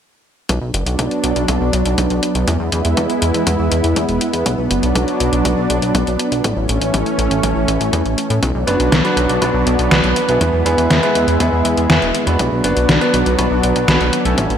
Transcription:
0.49 analog synth bass B1, analog synth pad F#3 B3 D4, kick, closed hi-hat
0.61 analog synth bass B1
0.74 analog synth bass F#1, closed hi-hat
0.86 analog synth bass B1, closed hi-hat
0.99 analog synth bass B1, kick, closed hi-hat
1.11 closed hi-hat
1.23 analog synth bass B1, closed hi-hat
1.36 analog synth bass B1, closed hi-hat
1.48 analog synth bass B1, kick, closed hi-hat
1.61 analog synth bass B1
1.73 analog synth bass B1, closed hi-hat
1.85 analog synth bass B1, closed hi-hat
1.98 analog synth bass B1, kick, closed hi-hat
2.10 analog synth bass B1, closed hi-hat
2.23 closed hi-hat
2.35 analog synth bass B1, closed hi-hat
2.48 analog synth bass E2, analog synth pad G#3 E4, kick, closed hi-hat
2.60 analog synth bass E2
2.72 analog synth bass E2, closed hi-hat
2.85 analog synth bass E2, closed hi-hat
2.97 analog synth bass E2, kick, closed hi-hat
3.10 closed hi-hat
3.22 analog synth bass E2, closed hi-hat
3.34 analog synth bass E2, closed hi-hat
3.47 analog synth bass E2, kick, closed hi-hat
3.59 analog synth bass E2
3.72 analog synth bass E2, closed hi-hat
3.84 analog synth bass E2, closed hi-hat
3.96 analog synth bass E2, kick, closed hi-hat
4.09 analog synth bass E1, closed hi-hat
4.21 closed hi-hat
4.33 analog synth bass E2, closed hi-hat
4.46 analog synth bass B1, analog synth pad F#3 D4, kick, closed hi-hat
4.58 analog synth bass B1
4.71 analog synth bass F#1, closed hi-hat
4.83 analog synth bass B1, closed hi-hat
4.95 analog synth bass B1, kick, closed hi-hat
5.08 closed hi-hat
5.20 analog synth bass B1, closed hi-hat
5.33 analog synth bass B1, closed hi-hat
5.45 analog synth bass B1, kick, closed hi-hat
5.58 analog synth bass B1
5.70 analog synth bass B1, closed hi-hat
5.82 analog synth bass B1, closed hi-hat
5.95 analog synth bass B1, kick, closed hi-hat
6.07 analog synth bass B1, closed hi-hat
6.19 closed hi-hat
6.32 analog synth bass B1, closed hi-hat
6.44 analog synth bass A1, analog synth pad E3 A3 C#4, kick, closed hi-hat
6.57 analog synth bass A1
6.69 analog synth bass A1, closed hi-hat
6.81 analog synth bass A1, closed hi-hat
6.94 analog synth bass A1, kick, closed hi-hat
7.06 closed hi-hat
7.18 analog synth bass A1, closed hi-hat
7.31 analog synth bass A1, closed hi-hat
7.43 analog synth bass A1, kick, closed hi-hat
7.56 analog synth bass A1
7.68 analog synth bass A1, closed hi-hat
7.80 analog synth bass A1, closed hi-hat
7.93 analog synth bass E2, kick, closed hi-hat
8.05 analog synth bass A1, closed hi-hat
8.18 closed hi-hat
8.30 analog synth bass A2, closed hi-hat
8.43 analog synth bass B1, analog synth pad F#3 B3 D4, kick, closed hi-hat
8.55 analog synth bass B1
8.67 analog synth bass F#1, grand piano B3 D4 F#4 B4, closed hi-hat
8.80 analog synth bass B1, closed hi-hat
8.92 analog synth bass B1, kick, snare, closed hi-hat
9.04 grand piano B3 D4 F#4 B4, closed hi-hat
9.17 analog synth bass B1, closed hi-hat
9.29 analog synth bass B1, closed hi-hat
9.42 analog synth bass B1, grand piano B3 D4 F#4 B4, kick, closed hi-hat
9.54 analog synth bass B1
9.66 analog synth bass B1, closed hi-hat
9.79 analog synth bass B1, closed hi-hat
9.91 analog synth bass B1, grand piano B3 D4 F#4 B4, kick, snare, closed hi-hat
10.04 analog synth bass B1, closed hi-hat
10.16 closed hi-hat
10.28 analog synth bass B1, grand piano B3 E4 G#4 B4, closed hi-hat
10.41 analog synth bass E2, analog synth pad G#3 E4, kick, closed hi-hat
10.53 analog synth bass E2
10.66 analog synth bass E2, grand piano B3 E4 G#4 B4, closed hi-hat
10.78 analog synth bass E2, closed hi-hat
10.90 analog synth bass E2, kick, snare, closed hi-hat
11.03 grand piano B3 E4 G#4 B4, closed hi-hat
11.15 analog synth bass E2, closed hi-hat
11.28 analog synth bass E2, closed hi-hat
11.40 analog synth bass E2, grand piano B3 E4 G#4 B4, kick, closed hi-hat
11.53 analog synth bass E2
11.65 analog synth bass E2, closed hi-hat
11.77 analog synth bass E2, closed hi-hat
11.90 analog synth bass E2, grand piano B3 E4 G#4 B4, kick, snare, closed hi-hat
12.02 analog synth bass E1, closed hi-hat
12.15 closed hi-hat
12.27 analog synth bass E2, grand piano B3 D4 F#4 B4, closed hi-hat
12.39 analog synth bass B1, analog synth pad F#3 B3 D4, kick, closed hi-hat
12.52 analog synth bass B1
12.64 analog synth bass F#1, grand piano B3 D4 F#4 B4, closed hi-hat
12.77 analog synth bass B1, closed hi-hat
12.89 analog synth bass B1, kick, snare, closed hi-hat
13.01 grand piano B3 D4 F#4 B4, closed hi-hat
13.14 analog synth bass B1, closed hi-hat
13.26 analog synth bass B1, closed hi-hat
13.39 analog synth bass B1, grand piano B3 D4 F#4 B4, kick, closed hi-hat
13.51 analog synth bass B1
13.63 analog synth bass B1, closed hi-hat
13.76 analog synth bass B1, closed hi-hat
13.88 analog synth bass B1, grand piano B3 D4 F#4 B4, kick, snare, closed hi-hat
14.00 analog synth bass B1, closed hi-hat
14.13 closed hi-hat
14.25 analog synth bass B1, grand piano A3 C#4 E4 A4, closed hi-hat
14.38 analog synth bass A1, analog synth pad E3 A3 C#4, kick, closed hi-hat
14.50 analog synth bass A1, closed hi-hat

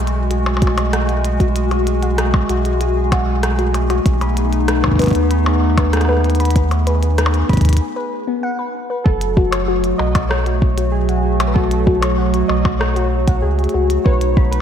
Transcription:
Already playing: ambient pad G#3 A3 F#4, synth texture G#4 G#5
0.00 sub bass B1
0.07 closed hi-hat
0.31 synth pluck F#4, closed hi-hat
0.46 percussion blips
0.57 percussion blips
0.62 synth pluck F#4, kick, closed hi-hat
0.67 percussion blips
0.78 closed hi-hat, percussion blips
0.93 synth pluck F#5, cross-stick, closed hi-hat
1.09 closed hi-hat
1.25 closed hi-hat
1.40 synth pluck F#4, kick, closed hi-hat
1.56 closed hi-hat
1.71 synth pluck F#4, closed hi-hat, percussion blips
1.87 closed hi-hat
2.03 synth pluck F#5, closed hi-hat
2.18 cross-stick, closed hi-hat
2.34 kick, percussion blips
2.49 sub bass B1, synth pluck F#4, closed hi-hat
2.65 closed hi-hat
2.81 synth pluck F#4, closed hi-hat
3.12 synth pluck F#5, kick, closed hi-hat, percussion blips
3.43 cross-stick, closed hi-hat
3.59 synth pluck F#4, closed hi-hat
3.74 closed hi-hat, percussion blips
3.90 synth pluck F#4, closed hi-hat, percussion blips
4.05 sub bass B1, ambient pad A3 B3 D#4, kick, closed hi-hat
4.21 synth pluck B5, closed hi-hat, percussion blips
4.37 closed hi-hat
4.53 closed hi-hat
4.68 synth pluck B4, cross-stick, closed hi-hat
4.84 kick, percussion blips
4.88 kick
4.92 kick
4.96 synth pluck B4, kick, closed hi-hat
4.99 sub bass D#2, kick, closed hi-hat
5.03 kick, closed hi-hat
5.06 kick, closed hi-hat
5.08 closed hi-hat
5.11 kick, closed hi-hat
5.13 closed hi-hat
5.15 closed hi-hat
5.31 synth pluck B5, closed hi-hat
5.46 percussion blips
5.78 synth pluck B4, kick, closed hi-hat, percussion blips
5.93 cross-stick, closed hi-hat
5.97 cross-stick
6.01 cross-stick, closed hi-hat
6.05 synth pluck B4, cross-stick
6.09 cross-stick
6.13 cross-stick
6.17 cross-stick
6.21 cross-stick, closed hi-hat
6.30 closed hi-hat
6.35 closed hi-hat
6.40 synth pluck B5, closed hi-hat
6.45 closed hi-hat
6.51 closed hi-hat
6.56 kick, closed hi-hat
6.71 closed hi-hat, percussion blips
6.87 synth pluck B4, closed hi-hat
7.03 closed hi-hat
7.18 synth pluck B4, cross-stick, closed hi-hat
7.26 percussion blips
7.34 closed hi-hat
7.49 sub bass D#2, synth pluck B5, kick, closed hi-hat
7.53 kick, closed hi-hat
7.57 kick, closed hi-hat
7.61 kick, closed hi-hat
7.65 kick, closed hi-hat
7.69 kick, closed hi-hat
7.73 kick, closed hi-hat
7.77 kick, closed hi-hat
7.96 synth pluck B4
8.28 synth pluck B3
8.43 synth pluck F#5
8.59 synth pluck B4
8.90 synth pluck B4
9.04 sub bass F#1, ambient pad F#3 A3 F#4, synth keys A4, kick
9.21 closed hi-hat
9.37 synth pluck F#4, kick
9.51 synth keys C#5, closed hi-hat, percussion blips
9.68 synth pluck F#4
9.84 closed hi-hat
9.98 sub bass B1, synth keys D#5, synth pluck F#5, percussion blips
10.15 kick, closed hi-hat, percussion blips
10.29 synth keys C#5, cross-stick
10.46 synth pluck F#4, closed hi-hat
10.62 kick
10.78 synth pluck F#4, closed hi-hat
10.92 synth keys G#4
11.09 synth pluck F#5, closed hi-hat
11.40 closed hi-hat, percussion blips
11.47 synth keys B4
11.54 synth pluck F#4, synth keys A4, kick
11.71 closed hi-hat
11.87 synth pluck F#4, kick
12.01 synth keys C#5, closed hi-hat, percussion blips
12.18 synth pluck F#5
12.34 closed hi-hat
12.48 sub bass B1, synth keys D#5, percussion blips
12.65 synth pluck F#4, kick, percussion blips
12.79 synth keys C#5, cross-stick
12.96 synth pluck F#4, closed hi-hat
13.28 synth pluck F#5, kick, closed hi-hat
13.42 sub bass C#2, synth keys G#4
13.59 closed hi-hat
13.64 closed hi-hat
13.69 closed hi-hat
13.74 sub bass C#2, synth pluck F#4
13.90 closed hi-hat
14.04 sub bass B1, ambient pad A3 B3 D#4, synth pluck B4, synth keys C#5, kick
14.21 closed hi-hat
14.37 synth pluck B5, kick
14.51 synth keys B4, closed hi-hat

